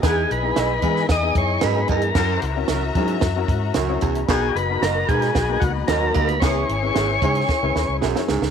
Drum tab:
HH |x-x-x-x-x-x-x-xx|x-x-x-xxx-x-x-xx|x-x-x-xxx-x-x-xx|x-x-x-xx--------|
SD |o---o--oo---o---|o---o---o---o---|o---o--oo---o---|o---o---o-o-oooo|
BD |o-----o-o-o---o-|o-----o-o-o---o-|o-----o-o-o---o-|o-----o-o-------|